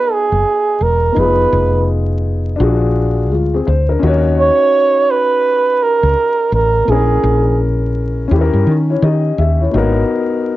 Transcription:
Already playing: B3 D#4 F#4 G#4 B4
0.12 G#4
0.32 F#1
0.81 E1 A#4
1.12 B3 D#4
1.16 F1 F4 G#4 B4
1.53 F1
2.56 A#1 D4 F4
2.61 F#4 G#4
3.31 D2 G#3 F4
3.54 C4 G#4
3.67 D2 C5
3.89 D4 A#4
3.99 D#2 C#4 D#4
4.04 F#4 C#5
4.40 C#5
5.11 B4
5.83 A#4
6.03 C#2
6.52 A1 A#4
6.85 A#1 B3 E4
6.90 C#4 G#4 A#4
7.23 A#1
8.28 D#2 C#4 E4
8.33 G4 A4
8.41 A#4
8.54 G2
8.67 D#3
8.90 E4 C#5
9.02 D#3 G4 D#5
9.38 D#2 G4 E5
9.61 E4 C#5
9.71 G#1 A#3 D#4
9.75 B3 F#4 A#4

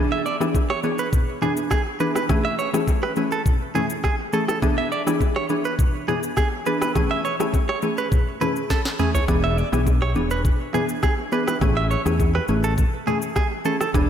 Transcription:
Already playing: E3 B3 D4 G#4
0.12 E5
0.26 D5, shaker
0.40 E3 B3 D4 G#4, cross-stick, low bongo, shaker
0.55 kick, high bongo, shaker
0.70 C#5, cross-stick
0.83 E3 B3 D4 G#4, low bongo, shaker
0.98 B4, shaker
1.13 kick, low conga, shaker
1.42 E3 B3 D4 G#4, low bongo, low conga, shaker
1.57 shaker
1.71 G#4, kick, cross-stick, high bongo, shaker
2.00 E3 B3 D4 G#4 B4, shaker
2.15 B4, cross-stick, high bongo, low bongo, shaker
2.29 E3 A3 C#4 G#4, kick, cross-stick, low conga, shaker
2.45 E5
2.59 C#5, shaker
2.73 E3 A3 C#4 G#4, cross-stick, low bongo, shaker
2.88 kick, high bongo, shaker
3.03 B4, cross-stick
3.16 E3 A3 C#4 G#4, low bongo, shaker
3.31 A4, shaker
3.46 kick, low conga, shaker
3.75 E3 A3 C#4 G#4, low bongo, low conga, shaker
3.90 shaker
4.04 G#4, kick, cross-stick, high bongo, shaker
4.33 E3 A3 C#4 G#4 A4, shaker
4.48 A4, cross-stick, high bongo, low bongo, shaker
4.62 E3 B3 D4 G#4, kick, cross-stick, low conga, shaker
4.78 E5
4.92 D5, shaker
5.06 E3 B3 D4 G#4, cross-stick, low bongo, shaker
5.21 kick, high bongo, shaker
5.36 C#5, cross-stick
5.49 E3 B3 D4 G#4, low bongo, shaker
5.65 B4, shaker
5.79 kick, low conga, shaker
6.08 E3 B3 D4 G#4, low bongo, low conga, shaker
6.23 shaker
6.37 G#4, kick, cross-stick, high bongo, shaker
6.66 E3 B3 D4 G#4 B4, shaker
6.82 B4, cross-stick, high bongo, low bongo, shaker
6.95 E3 A3 C#4 G#4, kick, cross-stick, low conga, shaker
7.11 E5
7.25 C#5, shaker
7.40 E3 A3 C#4 G#4, cross-stick, low bongo, shaker
7.54 kick, high bongo, shaker
7.69 C#5, cross-stick
7.82 E3 A3 C#4 G#4, low bongo, shaker
7.98 B4, shaker
8.12 kick, low conga, shaker
8.41 E3 A3 C#4 G#4 B4, low bongo, low conga, shaker
8.56 shaker
8.70 A4, kick, snare, high bongo, shaker
8.85 snare
8.99 E3 A3 C#4 G#4, mid tom, shaker
9.15 C#5, floor tom, high bongo, low bongo, shaker
9.28 E1 E3 B3 D4 G#4, kick, cross-stick, low conga, shaker
9.44 E5
9.58 D5, shaker
9.72 B1 E3 B3 D4 G#4, cross-stick, low bongo, shaker
9.87 kick, high bongo, shaker
10.02 C#5, cross-stick
10.15 E1 E3 B3 D4 G#4, low bongo, shaker
10.30 B4, shaker
10.45 kick, low conga, shaker
10.74 E3 B3 D4 G#4, low bongo, low conga, shaker
10.89 shaker
11.03 G#4, kick, cross-stick, high bongo, shaker
11.32 E3 B3 D4 G#4 B4, shaker
11.48 B4, cross-stick, high bongo, low bongo, shaker
11.61 A1 E3 A3 C#4 G#4, kick, cross-stick, low conga, shaker
11.77 E5
11.91 C#5, shaker
12.05 E2 E3 A3 C#4 G#4, cross-stick, low bongo, shaker
12.20 kick, high bongo, shaker
12.35 B4, cross-stick
12.48 A1 E3 A3 C#4 G#4, low bongo, shaker
12.64 A4, shaker
12.78 kick, low conga, shaker
13.07 E3 A3 C#4 G#4, low bongo, low conga, shaker
13.22 shaker
13.36 G#4, kick, cross-stick, high bongo, shaker
13.65 E3 A3 C#4 G#4 A4, shaker
13.81 A4, cross-stick, high bongo, low bongo, shaker
13.94 E1 E3 B3 D4 G#4, kick, cross-stick, low conga, shaker

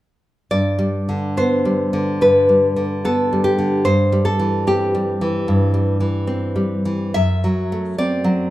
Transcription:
0.51 G2 D5
0.79 G3
1.09 D3
1.37 B3 C5
1.65 G3
1.93 D3
2.21 G2 B4
2.49 G3
2.76 D3
3.05 B3 A4
3.33 G3
3.44 G4
3.59 D3
3.85 G2 C5
4.12 G3
4.25 A4
4.39 E3
4.67 C4 G4
4.95 G3
5.21 E3
5.48 G2
5.74 G3
6.00 E3
6.27 C4
6.56 G3
6.85 E3
7.14 F#2 E5
7.44 F#3
7.72 A3
7.98 C4 D5
8.24 F#3

